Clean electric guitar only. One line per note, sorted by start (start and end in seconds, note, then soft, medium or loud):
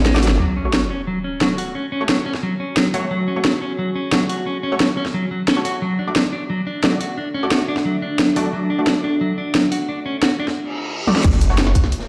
0.06 0.16 G#3 loud
0.23 0.29 F#3 medium
0.40 0.55 F#3 medium
0.57 0.67 C#4 medium
0.73 0.80 F#3 medium
0.90 1.01 C#4 medium
1.07 1.18 F#3 medium
1.24 1.40 C#4 medium
1.41 1.52 F#3 medium
1.58 1.74 F#4 medium
1.75 1.86 C#4 medium
1.92 2.03 C#4 medium
2.09 2.15 F#3 medium
2.26 2.32 C#4 medium
2.43 2.53 F#3 medium
2.60 2.76 C#4 medium
2.77 2.87 F#3 medium
2.94 3.04 F#3 medium
3.11 3.26 F#3 medium
3.28 3.38 C#4 medium
3.45 3.51 F#3 medium
3.62 3.72 C#4 medium
3.79 3.89 F#3 medium
3.96 4.11 C#4 medium
4.12 4.23 F#3 medium
4.29 4.45 F#4 medium
4.46 4.57 C#4 medium
4.63 4.74 C#4 medium
4.80 4.87 F#3 medium
4.97 5.03 C#4 loud
5.14 5.25 F#3 medium
5.31 5.42 F#3 medium
5.48 5.58 C#4 loud
5.65 5.75 F#4 medium
5.82 5.98 F#3 medium
5.99 6.09 D4 medium
6.16 6.22 F#3 medium
6.33 6.43 D4 medium
6.50 6.60 F#3 medium
6.67 6.82 D4 medium
6.84 6.94 F#3 medium
7.01 7.16 F#4 medium
7.18 7.28 D4 medium
7.34 7.45 C#4 medium
7.51 7.62 F#4 loud
7.68 7.75 D4 loud
7.85 7.96 F#3 medium
8.02 8.18 D4 medium
8.19 8.30 F#3 medium
8.36 8.47 F#3 medium
8.53 8.69 F#3 medium
8.70 8.81 D4 medium
8.87 8.93 F#3 medium
9.04 9.14 D4 medium
9.21 9.31 F#3 medium
9.38 9.54 D4 medium
9.55 9.65 F#3 medium
9.72 9.87 F#4 medium
9.89 9.99 D4 medium
10.06 10.16 C#4 loud
10.23 10.33 F#4 medium
10.40 10.46 D4 loud